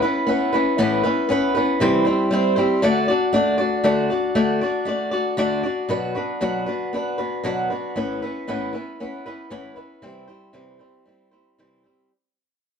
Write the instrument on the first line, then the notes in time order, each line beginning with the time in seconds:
steel-string acoustic guitar
0.02 B3 C#4 E4 B4
0.27 B3 C#4 E4 B4
0.53 B3 C#4 E4 B4
0.78 A2 E3 B3 C#4 E4 B4
1.03 B3 C#4 E4 B4
1.29 B3 C#4 E4 B4
1.55 B3 C#4 E4 B4
1.80 C3 E3 G3 C4 E4 C5
2.05 G3 C4 E4 C5
2.31 G3 C4 E4 C5
2.56 G3 C4 E4 C5
2.82 D3 A3 D4 F#4 D5
3.08 D4 F#4 D5
3.33 A3 D4 F#4 D5
3.58 D4 F#4 D5
3.84 D3 A3 D4 F#4 D5
4.10 D4 F#4 D5
4.35 D3 A3 D4 F#4 D5
4.61 D4 F#4 D5
4.85 A3 D4 F#4 D5
5.11 D4 F#4 D5
5.37 D3 A3 D4 F#4 D5
5.63 D4 F#4 D5
5.89 B2 F#3 B3 D4 F#4 B4
6.15 B3 D4 F#4 B4
6.41 B2 F#3 B3 D4 F#4 B4
6.66 B3 D4 F#4 B4
6.93 B3 D4 F#4 B4
7.18 B3 D4 F#4 B4
7.44 B2 F#3 B3 D4 F#4 B4
7.70 B3 D4 F#4 B4
7.96 A2 E3 B3 C#4 E4 B4
8.22 B3 C#4 E4 B4
8.47 A2 E3 B3 C#4 E4 B4
8.73 B3 C#4 E4 B4
9.00 B3 C#4 E4 B4
9.26 B3 C#4 E4 B4
9.50 A2 E3 B3 C#4 E4 B4
9.76 B3 C#4 E4 B4
10.02 C3 E3 G3 C4 E4 C5
10.28 G3 C4 E4 C5
10.53 C3 E3 G3 C4 E4 C5
10.79 G3 C4 E4 C5
11.06 G3 C4 E4 C5
11.31 G3 C4 E4 C5
11.58 C3 E3 G3 C4 E4 C5
11.84 G3 C4 E4 C5